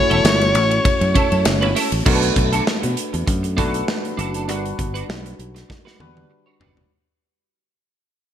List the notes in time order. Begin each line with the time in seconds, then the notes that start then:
Already playing: A3 C#4 E4 F#4 C#5
0.10 E1 C#4 E4 A4, ride
0.24 G1, muted clean electric guitar stroke, snare, ride
0.41 muted clean electric guitar stroke, ride
0.55 A1, ride
0.71 muted clean electric guitar stroke, ride
0.84 muted clean electric guitar stroke, kick, ride
1.01 F#2, muted clean electric guitar stroke, ride
1.14 C#4 E4 A4, kick, ride
1.30 F#2 C#4 E4 A4, ride
1.45 F#1, muted clean electric guitar stroke, snare, ride
1.61 G1 C#4 E4 B4, ride
1.75 C#4 E4 A4, snare, open hi-hat, ride
1.92 A1, muted clean electric guitar stroke, ride
2.06 B1 A3 D4 F#4 A4 A#4, kick, crash
2.14 B4
2.23 muted clean electric guitar stroke, closed hi-hat
2.36 B1, muted clean electric guitar stroke, kick, closed hi-hat
2.52 D4 F#4 A4, closed hi-hat
2.67 muted clean electric guitar stroke, snare
2.83 B2, muted clean electric guitar stroke, closed hi-hat
2.97 closed hi-hat
3.13 E2, muted clean electric guitar stroke, closed hi-hat
3.27 F#2, muted clean electric guitar stroke, kick, closed hi-hat
3.43 muted clean electric guitar stroke, closed hi-hat
3.57 B1 A3 D4 F#4 A4 B4, kick, closed hi-hat
3.73 D4 F#4 A4, closed hi-hat
3.87 muted clean electric guitar stroke, snare
4.04 muted clean electric guitar stroke, closed hi-hat
4.17 F#1 D4 F#4 A4, closed hi-hat
4.34 D4 F#4 A4, closed hi-hat
4.48 G1 G3 D4 F#4 A#4 B4, closed hi-hat
4.56 B4
4.64 muted clean electric guitar stroke, closed hi-hat
4.78 G1, muted clean electric guitar stroke, kick, closed hi-hat
4.94 D4 F#4 B4, closed hi-hat
5.08 B1, muted clean electric guitar stroke, snare
5.25 muted clean electric guitar stroke, closed hi-hat
5.39 B1, closed hi-hat
5.55 muted clean electric guitar stroke, snare, closed hi-hat
5.69 muted clean electric guitar stroke, kick, snare
5.85 D4 F#4 B4, snare
6.00 E2 G3 D4 F#4 B4, high tom
6.16 muted clean electric guitar stroke, high tom
6.30 muted clean electric guitar stroke
6.46 D4 F#4 C#5
6.60 F#1 D4 F#4 B4, floor tom
6.76 muted clean electric guitar stroke, floor tom